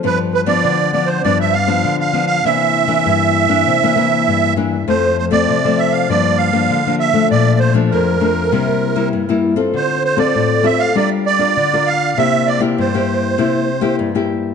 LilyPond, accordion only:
\new Staff \with { instrumentName = "Accordion" } { \time 4/4 \key c \mixolydian \tempo 4 = 99 b'8 b'16 d''8. d''16 c''16 d''16 e''16 f''8. f''8 f''16 | e''2.~ e''8 r8 | c''8 c''16 d''8. e''16 f''16 d''8 f''4 e''8 | d''8 c''8 bes'2 r4 |
c''8 c''16 d''8. e''16 f''16 d''8 d''4 f''8 | e''8 d''8 c''2 r4 | }